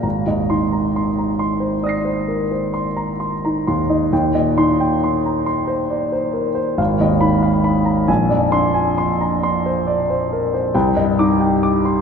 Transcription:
<<
  \new Staff \with { instrumentName = "Grand piano" } { \time 9/8 \key aes \lydian \tempo 4. = 45 << { r8 c'''8 r4 <ees''' bes''' c''''>2~ <ees''' bes''' c''''>8 | r8 c'''8 r2 r8 ces'''8 r8 | r8 c'''8 r2 r8 d'''8 r8 | } \\ { bes''16 ees''8 bes''16 c'''16 bes''16 c'''16 c''16 d''16 c''16 bes'16 c''16 c'''16 bes''16 c'''16 bes''16 c'''16 ees''16 | g''16 ees''8 g''16 c'''16 bes''16 c'''16 c''16 d''16 c''16 bes'16 c''16 f''16 ees''8 f''16 ces'''16 bes''16 | aes''16 d''8 aes''16 c'''16 bes''16 c'''16 c''16 d''16 c''16 bes'16 c''16 g''16 ees''8 g''16 d'''16 c'''16 | } >> }
  \new Staff \with { instrumentName = "Grand piano" } { \clef bass \time 9/8 \key aes \lydian aes,,16 ees,16 ees'8 r2 r8. ees'16 ees,16 ees'16 | ees,16 bes,16 ees'8 r2 aes,,16 ees,16 ees'8 r8 | bes,,16 f,16 d'8 r2 c,16 g,16 ees'8 r8 | }
>>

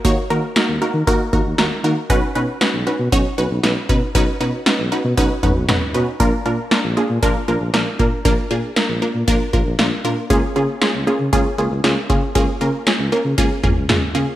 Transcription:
<<
  \new Staff \with { instrumentName = "Synth pluck" } { \time 4/4 \key bes \phrygian \tempo 4 = 117 <bes ees' ges' des''>8 <bes ees' ges' bes'>8 <bes ees' ges' bes'>8 <bes ees' ges' bes'>8 <bes ees' ges' bes'>8 <bes ees' ges' bes'>8 <bes ees' ges' bes'>8 <bes ees' ges' bes'>8 | <cis' dis' fis' b'>8 <cis' dis' fis' b'>8 <cis' dis' fis' b'>8 <cis' dis' fis' b'>8 <cis' dis' fis' cis''>8 <cis' dis' fis' b'>8 <cis' dis' fis' b'>8 <cis' dis' fis' b'>8 | <cis' dis' fis' b'>8 <cis' dis' fis' b'>8 <cis' dis' fis' b'>8 <cis' dis' fis' b'>8 <cis' dis' fis' b'>8 <cis' dis' fis' b'>8 <cis' dis' fis' b'>8 <cis' dis' fis' b'>8 | <bes d' f' bes'>8 <bes d' f' bes'>8 <bes d' f' bes'>8 <bes d' f' aes'>8 <bes d' f' bes'>8 <bes d' f' bes'>8 <bes d' f' bes'>8 <bes d' f' bes'>8 |
<bes d' f' bes'>8 <bes d' f' aes'>8 <bes d' f' bes'>8 <bes d' f' bes'>8 <bes d' f' bes'>8 <bes d' f' bes'>8 <bes d' f' bes'>8 <bes d' f' bes'>8 | <bes des' f' aes'>8 <bes des' f' aes'>8 <bes des' f' aes'>8 <bes des' f' aes'>8 <bes des' f' aes'>8 <bes des' f' aes'>8 <bes des' f' aes'>8 <bes des' f' aes'>8 | <bes des' f' aes'>8 <bes des' f' bes'>8 <bes des' f' aes'>8 <bes des' f' bes'>8 <bes des' f' aes'>8 <bes des' f' aes'>8 <bes des' f' aes'>8 <bes des' f' aes'>8 | }
  \new Staff \with { instrumentName = "Tuba" } { \clef bass \time 4/4 \key bes \phrygian ees,16 r16 ees16 r8 ees,16 r16 ees16 ees,16 r16 ees,16 ees,16 ees,16 r16 ees16 r16 | b,,16 r16 b,16 r8 b,,16 r16 b,16 b,,16 r16 b,,16 b,,16 b,,16 r16 b,16 r16 | b,,16 r16 b,16 r8 b,,16 r16 b,16 b,,16 r16 b,,16 b,,16 b,,16 r16 b,16 r16 | bes,,16 r16 bes,16 r8 bes,,16 r16 bes,16 bes,,16 r16 bes,,16 bes,,16 bes,,16 r16 bes,16 r16 |
bes,,16 r16 bes,16 r8 bes,,16 r16 bes,16 bes,,16 r16 bes,,16 bes,,16 bes,,16 r16 bes,16 r16 | des,16 r16 des16 r8 des,16 r16 des16 des,16 r16 des,16 des,16 des,16 r16 des16 r16 | des,16 r16 des16 r8 des,16 r16 des16 des,16 r16 des,16 des,16 des,16 r16 des16 r16 | }
  \new DrumStaff \with { instrumentName = "Drums" } \drummode { \time 4/4 bd4 sn4 bd8 bd8 sn4 | bd4 sn4 bd4 sn8 bd8 | bd4 sn4 bd8 <bd toml>8 <sn toml>4 | bd4 sn4 bd4 sn8 bd8 |
bd4 sn4 bd8 bd8 sn4 | bd4 sn4 bd4 sn8 bd8 | bd4 sn4 bd8 <bd toml>8 <sn toml>4 | }
>>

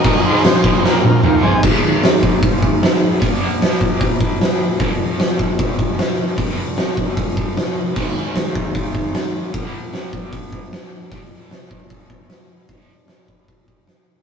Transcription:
<<
  \new Staff \with { instrumentName = "Transistor combo organ" } { \time 4/4 \key f \minor \tempo 4 = 152 <bes' ees''>8 <ees' c''>8 <ees' c''>8 <ees' c''>8 <f' bes'>8 <f' bes'>8 <f' bes'>8 <c' aes'>8 | r1 | r1 | r1 |
r1 | r1 | r1 | r1 |
r1 | }
  \new Staff \with { instrumentName = "Overdriven electric guitar" } { \clef bass \time 4/4 \key f \minor <bes, f bes>8 <aes, ees aes>8 <bes, f>8 <bes, f bes>4 <bes, f>8 <ees bes ees'>4 | <aes, ees aes>1 | <bes, f bes>1 | <f, c f>1 |
<f, c f>1 | <aes, ees aes>1 | <bes, f bes>1 | <f, c f>1 |
<f, c f>1 | }
  \new DrumStaff \with { instrumentName = "Drums" } \drummode { \time 4/4 <cymc bd>8 cymc16 sn16 <cymc sn>8 <cymc bd>8 sn8 tommh8 toml8 tomfh8 | <cymc bd>4 <hho sn>8 bd8 <hho bd>8 bd8 <hho sn>4 | <hho bd>4 <hho sn>8 bd8 <hho bd>8 bd8 <hho sn>4 | <hho bd>4 <hho sn>8 bd8 <hho bd>8 bd8 <hho sn>4 |
<hho bd>4 <hho sn>8 bd8 <hho bd>8 bd8 <hho sn>4 | <cymc bd>4 <hho sn>8 bd8 <hho bd>8 bd8 <hho sn>4 | <hho bd>4 <hho sn>8 bd8 <hho bd>8 bd8 <hho sn>4 | <hho bd>4 <hho sn>8 bd8 <hho bd>8 bd8 <hho sn>4 |
<hho bd>4 <hho sn>8 bd8 <hho bd>8 bd8 <hho sn>4 | }
>>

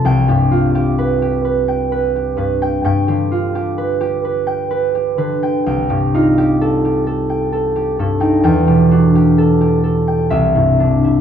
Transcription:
<<
  \new Staff \with { instrumentName = "Harp" } { \time 3/4 \key c \major \tempo 4 = 64 << { g''2. | g''2. | g''2. | g''2 e''4 | } \\ { c''16 g'16 f'16 g'16 b'16 g'16 b'16 g''16 b'16 g'16 b'16 g''16~ | g''16 g'16 f'16 g'16 b'16 g'16 b'16 g''16 b'16 g'16 b'16 g''16~ | g''16 g'16 f'16 g'16 a'16 g'16 a'16 g''16 a'16 g'16 a'16 g''16~ | g''16 g'16 fis'16 g'16 a'16 g'16 a'16 g''8 e'16 d'16 e'16 | } >> }
  \new Staff \with { instrumentName = "Harp" } { \clef bass \time 3/4 \key c \major c,16 g,2~ g,16 g,8 | g,16 d2~ d16 d8 | c,16 g,16 ees'2 g,16 ees'16 | e,16 b,16 d'4. c,16 g,16 d'8 | }
>>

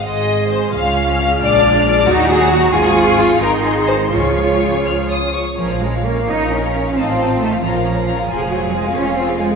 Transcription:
<<
  \new Staff \with { instrumentName = "Violin section" } { \time 6/8 \key des \major \tempo 4. = 89 c'''4. f'''4.~ | f'''4. bes''4. | des'''4. c'''4. | des'''4. f'''8 ees'''8 des'''8 |
\key bes \minor des''16 f''16 des''16 f''16 des''16 f''16 des''16 f''16 des''16 f''16 des''16 f''16 | a''16 f''16 a''16 f''16 a''16 f''16 bes''16 f''16 bes''16 f''16 bes''16 f''16 | aes''16 f''16 aes''16 f''16 aes''16 f''16 aes''16 f''16 aes''16 f''16 aes''16 f''16 | }
  \new Staff \with { instrumentName = "Violin section" } { \time 6/8 \key des \major ees''4 c''8 f''4 f''8 | d''4 d''8 ges'4. | aes'4 f'8 bes'8 aes'8 c''8 | des''2~ des''8 r8 |
\key bes \minor r4. bes'4. | f'4. f'8 des'8 f'8 | aes'4. f'4. | }
  \new Staff \with { instrumentName = "Viola section" } { \time 6/8 \key des \major << { aes'4. f'4. | f'4. ees'4. | aes'4. aes'4. | aes'2~ aes'8 r8 |
\key bes \minor bes'16 des''16 bes'16 des''16 bes'16 des''16 bes'16 des''16 bes'16 des''16 bes'16 des''16 | ees''16 c''16 ees''16 c''16 ees''16 c''16 des''16 bes'16 des''16 bes'16 des''16 bes'16 | c''16 aes'16 c''16 aes'16 c''16 aes'16 c''16 aes'16 c''16 aes'16 c''16 aes'16 | } \\ { aes4. aes4.~ | aes4. ges4. | f4. ees4. | f2~ f8 r8 |
des'16 f'16 des'16 f'16 des'16 f'16 des'16 f'16 des'16 f'16 des'16 f'16 | ees'16 f'16 ees'16 f'16 ees'16 f'16 des'16 f'16 des'16 f'16 des'16 f'16 | f'16 aes'16 f'16 aes'16 f'16 aes'16 f'16 aes'16 f'16 aes'16 f'16 aes'16 | } >> }
  \new Staff \with { instrumentName = "Cello section" } { \time 6/8 \key des \major r4. des'4. | d'4. ees'8 aes'8 ges'8 | f'4. ees'4. | f'2~ f'16 r8. |
\key bes \minor f8 aes8 bes8 ees'8 des'4 | c'4 a8 f4. | f8 ges8 aes8 des'8 c'8 aes8 | }
  \new Staff \with { instrumentName = "Double bass section" } { \clef bass \time 6/8 \key des \major aes,,4. des,4. | bes,,4. ees,4. | aes,,4. aes,,4. | des,2~ des,8 r8 |
\key bes \minor bes,,4. bes,,4. | a,,4. bes,,4. | f,,4. f,,4. | }
>>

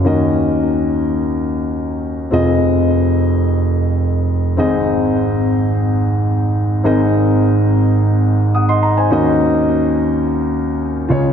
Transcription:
\new Staff \with { instrumentName = "Grand piano" } { \time 4/4 \key ees \dorian \tempo 4 = 106 << { r1 | r1 | r1 | r2. <ges'' ees'''>16 <ees'' c'''>16 bes''16 <c'' aes''>16~ |
<c'' aes''>16 r2. r8. | } \\ { <ees, ees des' ges' bes' ees''>1 | <f,, f, c' f' aes' ees''>1 | <aes,, aes, c' ees' aes' ees''>1 | <aes,, aes, c' ees' aes' bes' ees''>1 |
<ees, ees des' ees' ges' bes' ees''>2.~ <ees, ees des' ees' ges' bes' ees''>8 <des, des f' aes' des''>8 | } >> }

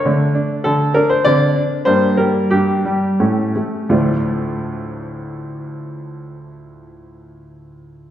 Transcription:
<<
  \new Staff \with { instrumentName = "Grand piano" } { \time 3/4 \key d \minor \tempo 4 = 85 << { r4 a'8 bes'16 c''16 d''4 | c''8 bes'8 g'2 | <d, a, f a d' f'>2.~ | <d, a, f a d' f'>2. | } \\ { <a d'>2 <c' d'>4 | <bes d'>2 <a cis'>4 | r2. | r2. | } >> }
  \new Staff \with { instrumentName = "Grand piano" } { \clef bass \time 3/4 \key d \minor d8 d'8 d8 d'8 d8 d'8 | g,8 g8 g,8 g8 a,8 a8 | r2. | r2. | }
>>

